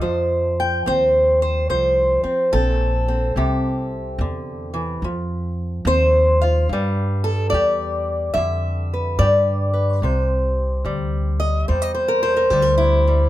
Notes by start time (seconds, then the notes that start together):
Already playing: D#5
0.01 F2 F3 C5
0.60 G5
0.86 D#2 C4 C5
1.42 C5
1.69 C2 F3 C5
2.23 C4, muted upright bass stroke
2.53 A#1 C4 A4
3.08 C4
3.36 C2 C3 G4
4.18 E2 D3
4.74 E3
5.02 F2 F3
5.85 D#2 C4 C5
6.41 F4 F5
6.69 G2 G3 B4
7.24 A4
7.50 E2 D5
7.54 G4
8.34 F2 D3 E5
8.94 B4
9.19 G2 G4 D5
9.74 B4
10.02 C2 C3 C5
10.85 D2 G3
11.40 D#5
11.68 E2 G3 C5
11.82 D#5
11.95 C5
12.08 A#4
12.23 C5
12.37 A#4
12.50 D2 G3 G4
12.62 A#4
12.78 E4
13.07 G3